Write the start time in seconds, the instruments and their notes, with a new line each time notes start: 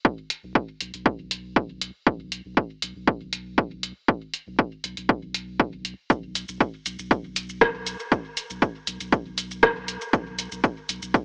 0.05 kick
0.30 closed hi-hat
0.43 sub bass B1
0.55 kick
0.81 sub bass B1, closed hi-hat
0.94 sub bass B1, closed hi-hat
1.06 kick
1.31 closed hi-hat
1.56 kick
1.81 closed hi-hat
2.07 sub bass B1, kick
2.32 closed hi-hat
2.45 sub bass B1
2.57 kick
2.82 sub bass B1, closed hi-hat
2.96 sub bass B1
3.07 kick
3.33 closed hi-hat
3.58 kick
3.83 closed hi-hat
4.08 kick
4.34 closed hi-hat
4.47 sub bass B1
4.59 kick
4.84 sub bass B1, closed hi-hat
4.97 sub bass B1, closed hi-hat
5.09 kick
5.34 closed hi-hat
5.60 kick
5.85 closed hi-hat
6.10 sub bass B1, kick, shaker
6.35 closed hi-hat, shaker
6.48 sub bass B1, shaker
6.60 kick, shaker
6.86 sub bass B1, closed hi-hat, shaker
6.99 sub bass B1, shaker
7.11 kick, shaker
7.36 closed hi-hat, shaker
7.49 shaker
7.61 kick, cross-stick, shaker
7.87 closed hi-hat, shaker
8.00 shaker
8.12 kick, shaker
8.37 closed hi-hat, shaker
8.50 sub bass B1, shaker
8.62 kick, shaker
8.87 sub bass B1, closed hi-hat, shaker
9.01 sub bass B1, closed hi-hat, shaker
9.12 kick, shaker
9.38 closed hi-hat, shaker
9.51 shaker
9.63 kick, cross-stick, shaker
9.88 closed hi-hat, shaker
10.01 shaker
10.13 sub bass B1, kick, shaker
10.39 closed hi-hat, shaker
10.52 sub bass B1, shaker
10.64 kick, shaker
10.89 sub bass B1, closed hi-hat, shaker
11.02 sub bass B1, shaker
11.14 kick, shaker